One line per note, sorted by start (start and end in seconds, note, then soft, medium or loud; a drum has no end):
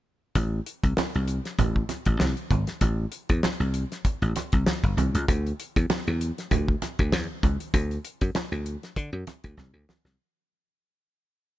0.35 0.59 A1 medium
0.35 kick loud
0.35 closed hi-hat medium
0.35 muted conga soft
0.66 closed hi-hat medium
0.83 0.94 C2 medium
0.83 kick medium
0.83 closed hi-hat medium
0.97 snare loud
0.97 high conga medium
1.14 1.38 C2 medium
1.14 closed hi-hat soft
1.28 closed hi-hat medium
1.45 snare soft
1.45 closed hi-hat soft
1.58 1.82 A1 medium
1.58 kick medium
1.58 closed hi-hat medium
1.58 muted conga soft
1.58 low conga medium
1.76 kick medium
1.89 snare soft
1.89 closed hi-hat medium
1.89 muted conga medium
2.05 2.17 A1 medium
2.05 kick medium
2.05 closed hi-hat medium
2.20 2.33 C2 medium
2.20 snare loud
2.20 high conga medium
2.37 closed hi-hat soft
2.51 2.64 G#1 medium
2.51 kick loud
2.51 closed hi-hat medium
2.51 high conga medium
2.67 snare soft
2.67 closed hi-hat soft
2.81 3.05 A1 medium
2.81 kick loud
2.81 closed hi-hat medium
2.81 muted conga soft
3.12 closed hi-hat medium
3.29 3.40 E2 medium
3.29 kick loud
3.29 closed hi-hat medium
3.43 muted slap bass stroke soft
3.43 snare loud
3.43 high conga medium
3.60 3.83 C2 medium
3.60 closed hi-hat soft
3.74 closed hi-hat medium
3.92 snare soft
3.92 closed hi-hat soft
4.05 muted slap bass stroke soft
4.05 kick medium
4.05 closed hi-hat medium
4.05 muted conga soft
4.22 4.32 A1 medium
4.22 closed hi-hat soft
4.36 snare soft
4.36 closed hi-hat medium
4.36 muted conga medium
4.52 4.63 C2 medium
4.52 kick medium
4.52 closed hi-hat soft
4.66 snare medium
4.66 high conga medium
4.84 4.94 G1 medium
4.84 kick medium
4.84 closed hi-hat soft
4.97 5.10 C2 medium
4.97 closed hi-hat medium
4.97 high conga medium
5.14 5.25 C#2 medium
5.14 closed hi-hat medium
5.28 5.51 D2 loud
5.28 kick loud
5.28 closed hi-hat medium
5.28 muted conga medium
5.47 closed hi-hat soft
5.60 closed hi-hat medium
5.76 5.86 E2 medium
5.76 kick medium
5.76 closed hi-hat medium
5.90 muted slap bass stroke soft
5.90 snare loud
5.90 high conga medium
6.07 6.30 E2 medium
6.07 closed hi-hat soft
6.21 closed hi-hat medium
6.38 snare soft
6.38 closed hi-hat soft
6.51 6.74 D2 medium
6.51 kick medium
6.51 closed hi-hat medium
6.51 muted conga soft
6.51 low conga medium
6.68 kick medium
6.82 snare soft
6.82 closed hi-hat medium
6.82 muted conga medium
6.99 7.13 D2 medium
6.99 kick loud
6.99 closed hi-hat medium
7.12 7.26 E2 medium
7.12 snare loud
7.12 high conga medium
7.43 7.56 C#2 medium
7.43 kick loud
7.43 closed hi-hat medium
7.43 high conga medium
7.60 closed hi-hat soft
7.74 7.97 D2 medium
7.74 kick loud
7.74 closed hi-hat medium
7.74 muted conga soft
7.91 closed hi-hat soft
8.05 closed hi-hat medium
8.21 8.32 F#2 medium
8.21 kick medium
8.21 closed hi-hat medium
8.34 muted slap bass stroke soft
8.34 snare loud
8.34 high conga medium
8.52 8.75 D2 medium
8.52 closed hi-hat soft
8.66 closed hi-hat medium
8.83 snare soft
8.83 closed hi-hat soft
8.96 9.10 D3 loud
8.96 kick medium
8.96 closed hi-hat medium
9.13 9.23 F#2 medium
9.27 snare soft
9.27 closed hi-hat medium
9.27 muted conga medium
9.44 9.54 D2 medium
9.44 kick medium
9.44 closed hi-hat medium
9.57 9.71 C2 medium
9.57 snare soft
9.57 high conga medium
9.73 9.84 D2 medium
9.89 snare medium
9.89 high conga medium
10.05 10.15 C2 medium
10.05 snare medium